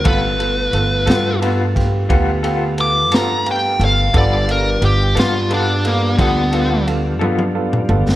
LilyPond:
<<
  \new Staff \with { instrumentName = "Lead electric guitar" } { \time 12/8 \key g \mixolydian \tempo 4. = 59 b'2 r2 d'''8 bes''8 g''8 f''8 | d''8 bes'8 g'8 f'8 d'8 bes8 b4 r2 | }
  \new Staff \with { instrumentName = "Clean electric guitar" } { \time 12/8 \key g \mixolydian <g b f' a'>8 r4 <b f' a'>8 <g b f' a'>8 r8 <g b f' a'>8 <b f' a'>8 r8 <b f' a'>8 r4 | <g b f' a'>8 r4 <b f' a'>8 <g b f' a'>8 r8 <g b f' a'>8 <b f' a'>8 r8 <b f' a'>8 r4 | }
  \new Staff \with { instrumentName = "Upright piano" } { \time 12/8 \key g \mixolydian <b f' a'>8 <b f' a'>8 <b f' a'>8 <b f' a'>8 <b f' a'>8 <b f' g'>8 <b f' g'>8 <b f' g'>8 <b f' a'>8 <b f' a'>8 <b f' g'>8 <b f' a'>8 | <b f' a'>8 <b f' a'>8 <b f' g'>8 <b f' b'>8 <b f' a'>8 <b f' a'>8 <b f' a'>8 <b f' a'>8 <b f' a'>8 <b f' a'>8 <b f' a'>8 <b f' a'>8 | }
  \new Staff \with { instrumentName = "Tonewheel organ" } { \time 12/8 \key g \mixolydian <a b f'>1. | <g d' f'>1. | }
  \new Staff \with { instrumentName = "Upright bass" } { \clef bass \time 12/8 \key g \mixolydian g,,4 g,,8 g,4. d,4. g,4 g,,8 | g,,4 g,,8 g,4. d,4. g,4 g,,8 | }
  \new DrumStaff \with { instrumentName = "Drums" } \drummode { \time 12/8 <bd cymr>8 cymr8 cymr8 <cymr sn>8 cymr8 <bd cymr sn>8 <bd cymr>8 cymr8 cymr8 <cymr sn>8 cymr8 cymr8 | <bd cymr>8 cymr8 cymr8 <cymr sn>8 cymr8 cymr8 <bd cymr>8 cymr8 cymr8 tommh16 tommh8 toml16 tomfh16 sn16 | }
>>